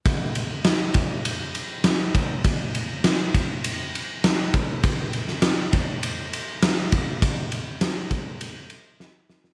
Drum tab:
RD |x-x-x-x-x-x-x-x-|x-x-x-x-x-x-x-x-|x-x-x-x-x-x-x-x-|x-x-x-x-x-x-----|
SD |----o-------o---|----o-------o---|---oo-------o---|----o-------o-oo|
BD |o-----o-------o-|o-----o-------o-|o-----o-------o-|o-----o---------|